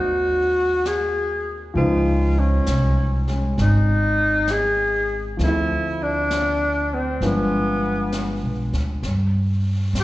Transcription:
Already playing: upright bass D#2, grand piano F#3 A#3 C4 D#4 D5, alto saxophone F#4
0.85 alto saxophone G#4, snare, hi-hat pedal
1.74 upright bass C#2, grand piano F3 G#3 C5, alto saxophone F4, brush sweep
1.78 grand piano D#4
2.39 alto saxophone C#4
2.66 upright bass C2, snare, hi-hat pedal
3.27 grand piano G#3 C#4, snare
3.58 upright bass G#1, alto saxophone D#4, brush sweep, snare
4.47 alto saxophone G#4, snare, hi-hat pedal
5.37 upright bass D2, grand piano F3 A3, brush sweep, snare
5.43 grand piano C4, alto saxophone E4
5.48 grand piano E4
6.02 alto saxophone D4
6.30 snare, hi-hat pedal
6.94 alto saxophone C4
7.21 upright bass G1, grand piano F3 G#3 B3 D4, brush sweep, snare
7.26 alto saxophone B3
8.12 snare, hi-hat pedal
8.43 upright bass B1
8.73 upright bass D2, snare
9.03 upright bass G2, brush sweep, snare
9.93 upright bass F#2, snare, hi-hat pedal
10.00 alto saxophone G4

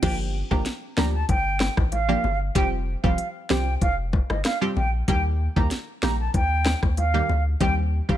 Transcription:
0.02 sub bass G1, synth stab F3 A#3 D4 G4, flute G5, kick, closed hi-hat, crash, high bongo
0.51 sub bass G1, synth stab F3 A#3 D4 G4, flute A#5, kick, high bongo
0.66 snare, closed hi-hat
0.97 sub bass D2, synth stab F3 A#3 D4 G4, flute A#5, cross-stick, snare
1.14 flute A5
1.29 sub bass G1, flute G5, kick, closed hi-hat, high bongo
1.60 cross-stick, snare, high bongo
1.77 sub bass A1, kick, cross-stick, high bongo
1.92 flute F5, closed hi-hat, high bongo
2.08 synth stab F3 A#3 D4 G4
2.24 sub bass G1, low bongo
2.55 sub bass F1, synth stab F3 G3 C4 G4, flute G5, kick, closed hi-hat, high bongo
3.04 sub bass F1, synth stab F3 G3 C4 G4, flute F5, kick, high bongo
3.18 closed hi-hat
3.50 sub bass C2, synth stab F3 G3 C4 G4, flute G5, cross-stick, snare
3.81 sub bass F1, flute F5, kick, closed hi-hat, high bongo
4.13 kick, high bongo
4.30 sub bass G1, flute D#5, cross-stick, high bongo
4.45 flute F5, cross-stick, snare, closed hi-hat, high bongo
4.61 synth stab F3 G3 C4 G4
4.76 sub bass A#1, flute G5, low bongo
5.08 sub bass D#2, synth stab D#3 G3 A#3 G4, flute G5, kick, closed hi-hat, high bongo
5.56 sub bass D#2, synth stab D#3 G3 A#3 G4, flute A#5, kick, high bongo
5.71 snare, closed hi-hat
6.03 sub bass A#1, synth stab D#3 G3 A#3 G4, flute A#5, cross-stick, snare
6.20 flute A5
6.34 sub bass D#2, flute G5, kick, closed hi-hat, high bongo
6.66 cross-stick, snare, high bongo
6.83 sub bass D#2, kick, cross-stick, high bongo
6.97 flute F5, closed hi-hat, high bongo
7.14 synth stab D#3 G3 A#3 G4
7.29 sub bass D2, low bongo
7.60 sub bass D#2, synth stab D#3 G3 C4 G4, flute G5, kick, closed hi-hat, high bongo
8.09 sub bass D#2, synth stab D#3 G3 C4 G4, flute F5, kick, high bongo

